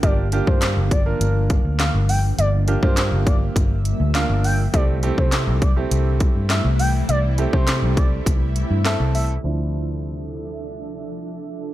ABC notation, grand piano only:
X:1
M:4/4
L:1/16
Q:1/4=102
K:Dm
V:1 name="Grand piano"
[B,DFG]2 [B,DFG]4 z [B,DFB]6 z3 | z2 [B,DFG] [B,DFG]6 z3 [B,DFB]3 z | [A,CEG]2 [A,CEG]4 z [A,CEG]6 z3 | z2 [A,CEG] [A,CEG]6 z3 [A,CEA]3 z |
[F,DE]16 |]